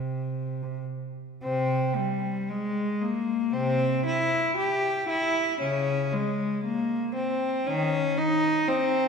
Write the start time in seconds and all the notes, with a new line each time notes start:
Already playing: C3
1.43 C3 C4
1.96 G3
2.49 G#3
3.02 A#3
3.53 C3 C4
4.06 E4
4.57 G4
5.10 E4
5.61 C#3 C#4
6.12 G#3
6.64 A#3
7.15 C4
7.67 D#3 C#4
8.18 D#4
8.68 C4